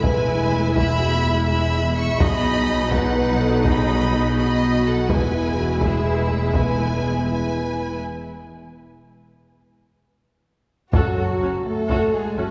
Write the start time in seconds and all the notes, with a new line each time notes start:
Already playing: E1 E2 G#3 E4
0.03 B4 G#5, taiko
0.76 G#4 E5 B5, taiko
0.99 F#4
1.24 E4
1.47 G#4 E5 B5
1.97 E5 C#6
2.20 B1 B2 F#3 D#4 D#5 B5, taiko
2.91 F#4 B4 F#5, taiko
3.16 B4
3.41 A4
3.64 G#4 D#5 B5, taiko
4.37 F#4 D#5 B5
4.85 A4 F#5
5.09 E1 E2 G#3 E4 G#4 B4 G#5, taiko
5.33 E4
5.58 F#4
5.81 G#4 E5, taiko
6.06 B4
6.30 G#4
6.53 B4 G#5, taiko
6.78 A4
7.02 G#4
7.27 E4 B4 G#5
10.92 F#1 F#2 F#3 F#4 A4 C#5, taiko
11.16 F#1 F#2 F#4 A4
11.40 F#1 F#2 C#4 F#4
11.66 A3 A4
11.89 F#1 F#2 F#4 A4 C#5, taiko
12.13 G#3 G#4
12.37 F#1 F#2 A3 C#4 F#4 A4